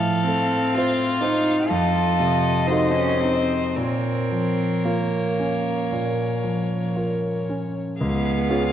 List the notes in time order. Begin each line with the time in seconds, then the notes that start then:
Already playing: A2 F3 A4 F5
0.24 A3 C4
0.74 F4 C5
1.20 C4 D#4
1.68 F2 F4 A4 D#5
2.20 C3
2.67 D#4 F#4 A4 C5
2.94 C#4
3.19 C4
3.23 D#4
3.75 A#2 C4 A#4 C#5
4.32 F3
4.85 A#3 F4 A#4
5.39 C#4
5.92 A#2
6.44 F3
6.96 F4 A#4
7.50 C#4
7.99 C#2 B3 G#4 F5
8.50 C#4 F4 G#4